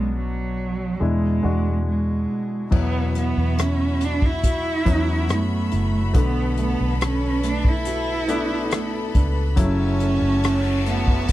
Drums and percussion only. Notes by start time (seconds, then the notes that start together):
2.72 kick, crash
3.15 closed hi-hat
3.58 cross-stick, closed hi-hat
4.01 closed hi-hat
4.22 kick
4.44 kick, closed hi-hat
4.86 kick, closed hi-hat
5.29 cross-stick, closed hi-hat
5.72 closed hi-hat
6.14 kick, closed hi-hat
6.57 closed hi-hat
7.01 cross-stick, closed hi-hat
7.43 cross-stick, closed hi-hat
7.65 kick
7.85 closed hi-hat
8.29 closed hi-hat
8.71 cross-stick, closed hi-hat
9.15 kick, closed hi-hat
9.57 kick, closed hi-hat
10.00 closed hi-hat
10.44 cross-stick, closed hi-hat
10.86 closed hi-hat
11.08 kick
11.28 kick, closed hi-hat